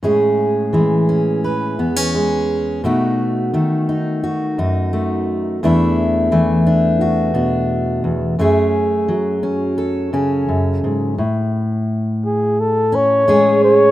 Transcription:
<<
  \new Staff \with { instrumentName = "Flugelhorn" } { \time 4/4 \key a \major \tempo 4 = 86 r1 | r1 | r1 | r1 |
r4. gis'8 a'8 cis''4 cis''8 | }
  \new Staff \with { instrumentName = "Steel-string acoustic guitar" } { \time 4/4 \key a \major << { <gis cis' gis'>4 gis8 cis'8 b'8 b16 cis'16 gis4 | <a dis' fis'>4 a8 dis'8 fis'8 dis'8 a4 | <a d' e'>4 a8 d'8 fis'8 d'4. | <a cis' gis'>4. cis'8 a'8 cis'4. |
r2 r8 cis'8 <gis cis' gis'>4 | } \\ { a,4 e4. e,4. | b,4 dis4. fis,4. | e,4 e4. b,4 e,8 | fis,4 fis4. cis8 fis,8 gis,8 |
a,1 | } >> }
>>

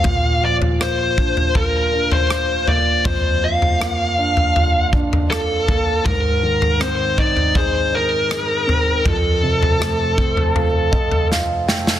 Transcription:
<<
  \new Staff \with { instrumentName = "Lead electric guitar" } { \time 4/4 \key bes \major \tempo 4 = 80 f''8 d''8 c''4 bes'8. c''8. d''8 | c''8 f''2 r8 a'4 | bes'4 c''8 d''8 c''8 bes'4. | a'2. r4 | }
  \new Staff \with { instrumentName = "Grand piano" } { \time 4/4 \key bes \major bes,8 f8 bes8 d'8 f'8 d'4 bes8 | f,8 f8 bes8 d'8 f'8 d'8 f'8 bes8 | aes,8 ees8 c'8 ees'8 aes'8 ees'8 aes'8 c'8 | f,8 c8 a8 c'8 f'8 <c' ees''>8 <f' f''>8 <a g''>8 | }
  \new DrumStaff \with { instrumentName = "Drums" } \drummode { \time 4/4 <bd tomfh>8. tomfh16 ss8 bd16 tomfh16 <bd tomfh>8. tomfh16 ss8 tomfh8 | <bd tomfh>8. tomfh16 ss8. tomfh16 tomfh8 bd16 tomfh16 ss8 <bd tomfh>8 | <bd tomfh>8. tomfh16 ss8 bd16 tomfh16 <bd tomfh>4 ss8 tomfh8 | <bd tomfh>8. tomfh16 ss8 bd16 tomfh16 tomfh8 bd16 tomfh16 sn8 sn16 sn16 | }
>>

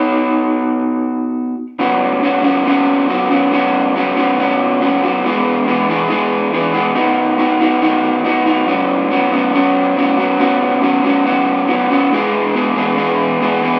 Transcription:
\new Staff \with { instrumentName = "Clean electric guitar" } { \clef bass \time 4/4 \key b \major \tempo 4 = 139 <b dis' fis' cis''>2.~ <b dis' fis' cis''>8 r8 | <fis, cis fis b cis' fis'>4 <fis, cis fis b cis' fis'>8 <fis, cis fis b cis' fis'>8 <fis, cis fis b cis' fis'>4 <fis, cis fis b cis' fis'>8 <fis, cis fis b cis' fis'>8 | <fis, cis fis b cis' fis'>4 <fis, cis fis b cis' fis'>8 <fis, cis fis b cis' fis'>8 <fis, cis fis b cis' fis'>4 <fis, cis fis b cis' fis'>8 <fis, cis fis b cis' fis'>8 | <e, b, e gis b gis'>4 <e, b, e gis b gis'>8 <e, b, e gis b gis'>8 <e, b, e gis b gis'>4 <e, b, e gis b gis'>8 <e, b, e gis b gis'>8 |
<dis b dis' fis'>4 <dis b dis' fis'>8 <dis b dis' fis'>8 <dis b dis' fis'>4 <dis b dis' fis'>8 <dis b dis' fis'>8 | <fis, cis fis b cis' fis'>4 <fis, cis fis b cis' fis'>8 <fis, cis fis b cis' fis'>8 <fis, cis fis b cis' fis'>4 <fis, cis fis b cis' fis'>8 <fis, cis fis b cis' fis'>8 | <fis, cis fis b cis' fis'>4 <fis, cis fis b cis' fis'>8 <fis, cis fis b cis' fis'>8 <fis, cis fis b cis' fis'>4 <fis, cis fis b cis' fis'>8 <fis, cis fis b cis' fis'>8 | <e, b, e gis b gis'>4 <e, b, e gis b gis'>8 <e, b, e gis b gis'>8 <e, b, e gis b gis'>4 <e, b, e gis b gis'>8 <e, b, e gis b gis'>8 | }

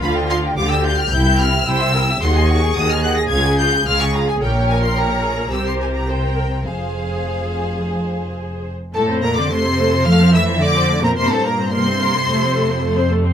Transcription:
<<
  \new Staff \with { instrumentName = "Violin section" } { \time 4/4 \key f \minor \tempo 4 = 108 b''8 c'''8 d'''16 e'''16 g'''16 f'''16 g'''8 f'''8 e'''4 | c'''8 des'''8 ees'''16 f'''16 ges'''16 bes'''16 aes'''8 g'''8 f'''16 des'''16 bes''16 aes''16 | g''8 aes''16 c'''16 bes''4 e'''16 c'''16 aes''16 bes''16 g''4 | f''2. r4 |
\key f \major a''8 bes''16 d'''16 c'''4 f'''8 e'''8 d'''8. bes''16 | c'''16 a''16 bes''8 c'''2~ c'''8 r8 | }
  \new Staff \with { instrumentName = "Violin section" } { \time 4/4 \key f \minor << { f''16 g''16 f''16 g''16 f''16 g''16 f''16 g''16 g''16 e''16 g''16 e''16 g''16 e''16 g''16 e''16 | ges''16 aes''16 ges''16 aes''16 ges''16 aes''16 ges''16 aes''16 f''16 aes''16 f''16 aes''16 f''16 aes''16 f''16 aes''16 | des''4 des''4 c''4 c''4 | c''2.~ c''8. r16 |
\key f \major a'8 bes'16 d''16 c''4 f''8 e''8 d''8. bes'16 | c''16 a'16 bes'8 c''2~ c''8 r8 | } \\ { f'16 g'16 f'16 g'16 f'16 g'16 f'16 g'16 e'16 g'16 e'16 g'16 e'16 g'16 e'16 g'16 | ges'16 aes'16 ges'16 aes'16 ges'16 aes'16 ges'16 aes'16 f'16 aes'16 f'16 aes'16 f'16 aes'16 f'16 aes'16 | g'4 g'8 aes'8 bes'4 bes'4 | aes'2.~ aes'8. r16 |
r1 | r1 | } >> }
  \new Staff \with { instrumentName = "Viola section" } { \time 4/4 \key f \minor f'4 g'4 e'4 c''8 bes'8 | aes'2. aes'4 | bes'2 g'4 c''8 bes'8 | aes'2.~ aes'8 r8 |
\key f \major <a a'>16 <c' c''>16 <a a'>16 <c' c''>16 <a a'>16 <c' c''>16 <a a'>16 <c' c''>16 <a a'>16 <c' c''>16 <a a'>16 <c' c''>16 <a a'>16 <c' c''>16 <a a'>16 <c' c''>16 | <bes bes'>16 <c' c''>16 <bes bes'>16 <c' c''>16 <bes bes'>16 <c' c''>16 <bes bes'>16 <c' c''>16 <a a'>16 <c' c''>16 <a a'>16 <c' c''>16 <a a'>16 <c' c''>16 <a a'>16 <c' c''>16 | }
  \new Staff \with { instrumentName = "Cello section" } { \clef bass \time 4/4 \key f \minor d4 d4 c4 c4 | ees4 ees4 des4 des4 | bes,2 c2 | f,2.~ f,8 r8 |
\key f \major a,8 bes,16 d16 c4 f8 e8 d8. bes,16 | c16 a,16 bes,8 c2~ c8 r8 | }
  \new Staff \with { instrumentName = "Double bass section" } { \clef bass \time 4/4 \key f \minor d,4 d,4 c,4 c,4 | ees,4 ees,4 des,4 des,4 | bes,,2 c,2 | f,,2.~ f,,8 r8 |
\key f \major f,1 | g,2 f,2 | }
>>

